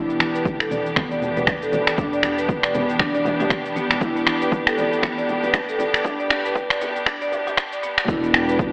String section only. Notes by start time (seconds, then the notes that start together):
Already playing: E3 B3 D4 G4
8.09 E3 B3 D4 G4